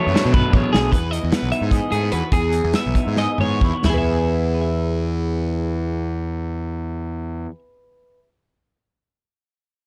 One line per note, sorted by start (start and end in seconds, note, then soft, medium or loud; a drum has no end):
0.00 0.32 B2 medium
0.00 0.13 F#3 medium
0.00 0.92 A3 medium
0.00 0.13 B3 medium
0.00 0.14 D4 medium
0.00 1.73 E4 medium
0.00 0.33 C#5 medium
0.07 0.14 F#2 medium
0.13 0.91 B2 medium
0.13 0.90 F#3 medium
0.13 0.92 B3 medium
0.13 0.91 D4 medium
0.13 snare medium
0.25 0.41 B2 medium
0.33 0.52 B2 medium
0.33 0.53 B4 medium
0.33 kick loud
0.33 mid tom medium
0.53 0.62 A1 medium
0.53 0.71 C#3 medium
0.53 0.72 C#5 medium
0.53 kick medium
0.71 0.92 D3 medium
0.71 0.92 G#4 medium
0.71 snare medium
0.75 0.91 B1 medium
0.92 2.32 E2 medium
0.92 1.18 E2 medium
0.92 1.11 B4 medium
0.92 kick medium
0.92 closed hi-hat medium
1.11 2.52 E3 medium
1.11 1.31 D#5 medium
1.11 closed hi-hat medium
1.24 1.31 E2 medium
1.31 1.93 B3 medium
1.31 1.51 B4 medium
1.31 snare medium
1.31 closed hi-hat medium
1.43 1.51 B1 medium
1.52 2.36 D#4 soft
1.52 1.72 E5 medium
1.52 closed hi-hat soft
1.61 1.79 G#2 medium
1.71 2.13 G#4 medium
1.71 1.92 D#5 medium
1.71 kick medium
1.71 closed hi-hat medium
1.92 2.09 G#2 medium
1.92 2.03 A3 soft
1.92 2.12 G#4 medium
1.92 closed hi-hat soft
2.03 2.33 B3 soft
2.12 2.21 E2 medium
2.12 2.31 F#4 soft
2.12 2.32 B4 medium
2.12 closed hi-hat soft
2.32 3.83 E2 medium
2.32 2.60 E2 medium
2.32 2.75 G#4 medium
2.32 kick medium
2.32 closed hi-hat medium
2.52 3.86 E3 medium
2.52 closed hi-hat medium
2.64 2.73 E2 medium
2.73 3.39 B3 medium
2.73 3.18 E5 medium
2.73 snare medium
2.73 closed hi-hat medium
2.86 2.95 B1 medium
2.95 3.83 D#4 soft
2.95 kick medium
2.95 closed hi-hat soft
3.07 3.26 G#2 medium
3.17 3.62 G#4 soft
3.17 3.40 D#5 medium
3.17 snare soft
3.38 3.59 G#2 medium
3.38 3.83 B3 soft
3.38 3.85 C#5 medium
3.38 mid tom medium
3.61 3.72 E2 medium
3.61 3.74 E4 medium
3.61 kick medium
3.74 3.85 F#4 soft
3.84 7.49 E2 medium
3.84 7.46 E2 medium
3.84 7.52 E3 medium
3.84 3.98 E4 medium
3.84 snare medium
3.84 floor tom medium
3.84 crash medium
3.89 7.54 B3 medium
3.89 7.51 G#4 medium
3.89 4.61 G#4 soft
3.94 7.55 B4 medium
3.94 7.59 E5 medium
4.55 8.19 B4 soft
4.61 8.26 E5 medium